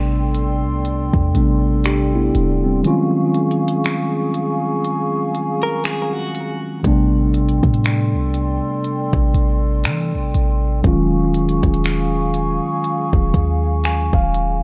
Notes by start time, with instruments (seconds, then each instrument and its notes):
Already playing: 808-style bass A1, tine electric piano C3 G3 A3 B3 D4, flute section A4 D5 G5 C6
0.35 closed hi-hat
0.64 808-style bass C2
0.85 closed hi-hat
1.13 808-style bass E2, kick
1.35 808-style bass A1, tine electric piano C3 G3 A3 B3 D4, closed hi-hat
1.84 tine electric piano D4 G4, finger snap, closed hi-hat
2.15 tine electric piano B3 E4
2.35 808-style bass D#1, closed hi-hat
2.64 tine electric piano G3 C4
2.83 tine electric piano D#3 F#3 G#3 C#4, flute section G#4 F5 G#5 C#6, closed hi-hat
2.88 tine electric piano F4
3.34 closed hi-hat
3.51 closed hi-hat
3.68 closed hi-hat
3.84 finger snap, closed hi-hat
4.34 closed hi-hat
4.85 closed hi-hat
5.35 closed hi-hat
5.63 clean electric guitar A#4
5.84 clean electric guitar G#4, finger snap, closed hi-hat
6.13 clean electric guitar F#4
6.35 closed hi-hat
6.83 808-style bass A1, tine electric piano C3 G3 A3 B3, flute section A4 D5 G5 C6, kick, closed hi-hat
6.87 tine electric piano D4
7.34 closed hi-hat
7.49 closed hi-hat
7.63 808-style bass A2, kick, closed hi-hat
7.74 closed hi-hat
7.84 finger snap, closed hi-hat
8.14 808-style bass C2
8.34 closed hi-hat
8.84 closed hi-hat
9.13 808-style bass A1, kick
9.34 808-style bass A1, closed hi-hat
9.84 808-style bass E3, finger snap, closed hi-hat
10.14 808-style bass A1
10.34 808-style bass A1, closed hi-hat
10.83 808-style bass D#1, tine electric piano D#3 F#3 G#3 C#4, flute section G#4 F5 G#5 C#6, kick, closed hi-hat
10.87 tine electric piano F4
11.34 closed hi-hat
11.49 closed hi-hat
11.63 808-style bass D#1, kick, closed hi-hat
11.74 closed hi-hat
11.84 finger snap, closed hi-hat
12.34 closed hi-hat
12.84 closed hi-hat
13.13 808-style bass D#1, kick
13.34 808-style bass D#2, kick, closed hi-hat
13.84 tine electric piano G#5, finger snap, closed hi-hat
14.13 808-style bass D#1, tine electric piano F5, kick
14.34 closed hi-hat